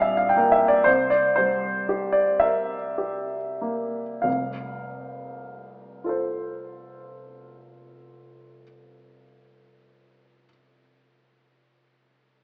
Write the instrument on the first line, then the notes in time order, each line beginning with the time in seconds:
grand piano
Already playing: A#1 G3 D5 F5
0.02 E5
0.17 F5
0.29 G5
0.36 A#3 A#4 F5
0.52 E5
0.68 D5
0.84 C2 C5
1.10 D5
1.36 G3 C5
1.89 G4
2.12 D5
2.40 A#4 E5
2.98 G4
3.61 A#3
4.22 F1 C2 F5
6.04 F4 A4
6.09 C5